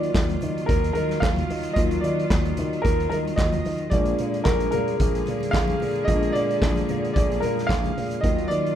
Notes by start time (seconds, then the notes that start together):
Already playing: D#3 F#3 A#3 D#4 F4 A#4 D5
0.03 closed hi-hat
0.14 D#2, kick, snare, clap
0.29 closed hi-hat, high conga
0.41 D#3, closed hi-hat, muted conga, high conga, low conga
0.58 closed hi-hat
0.66 D#2 A#4, kick, closed hi-hat
0.84 closed hi-hat
0.93 D#3 A#4, closed hi-hat, high conga
1.09 snare, closed hi-hat, high conga
1.20 D#2 F5, kick, snare, clap
1.36 closed hi-hat, high conga, low conga
1.50 D#3, open hi-hat
1.63 closed hi-hat
1.73 D#2 F#3 A#3 D#4 F4 D#5, kick, closed hi-hat, muted conga
1.78 A#4
1.91 closed hi-hat
2.01 D#3 D5, closed hi-hat, muted conga
2.19 closed hi-hat
2.30 D#2, kick, snare, clap
2.45 closed hi-hat, high conga
2.57 D#3, closed hi-hat, muted conga, high conga, low conga
2.73 closed hi-hat
2.82 D#2 A#4, kick, closed hi-hat, muted conga
3.00 closed hi-hat
3.09 D#3 A#4, closed hi-hat, high conga
3.25 closed hi-hat, high conga
3.36 D#2 D#5, kick, snare, clap, muted conga
3.52 closed hi-hat, high conga, low conga
3.65 D#3, open hi-hat, muted conga
3.78 closed hi-hat
3.90 A#1 D3 G#3 A#3 D4 F4 G#4 A#4 D5, kick, closed hi-hat
4.06 closed hi-hat
4.19 A#2, closed hi-hat, muted conga
4.34 closed hi-hat
4.44 A#1 A#4, kick, snare, clap
4.60 closed hi-hat, high conga
4.71 A#2 A#4, closed hi-hat, high conga, low conga
4.88 closed hi-hat
5.00 A#1, kick, closed hi-hat, muted conga
5.15 closed hi-hat
5.26 A#2, closed hi-hat, high conga
5.41 closed hi-hat, high conga
5.51 A#1 F5, kick, snare, muted conga
5.55 clap
5.68 closed hi-hat, high conga, low conga
5.80 A#2, open hi-hat, muted conga
5.96 closed hi-hat
6.05 A#1 G#3 A#3 B3 D#5, kick, closed hi-hat
6.09 F4 A#4
6.15 D4
6.23 closed hi-hat
6.33 A#2 D5, closed hi-hat
6.50 closed hi-hat
6.61 A#1, kick, snare, clap, muted conga
6.76 closed hi-hat, high conga
6.89 A#2, closed hi-hat, high conga, low conga
7.04 closed hi-hat
7.13 A#1 D5, kick, closed hi-hat, muted conga
7.32 closed hi-hat
7.40 A#2 A#4, closed hi-hat, muted conga, high conga
7.58 snare, closed hi-hat, high conga
7.67 A#1 F5, kick, snare
7.71 clap
7.84 closed hi-hat, high conga, low conga
7.97 A#2, open hi-hat
8.11 closed hi-hat
8.21 D#2 D#3 F#3 A#3 D#4 F4 D#5, kick, closed hi-hat
8.25 A#4
8.38 closed hi-hat
8.48 D#3 D5, closed hi-hat, muted conga
8.66 closed hi-hat